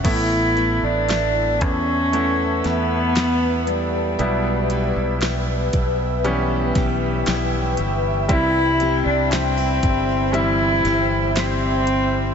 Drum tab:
CC |x-------|--------|--------|
HH |xxxxxxxx|xxxxxxxx|xxxxxxxx|
SD |--o--oo-|--o--oo-|--o--oo-|
BD |o--o----|---o-o--|o--o----|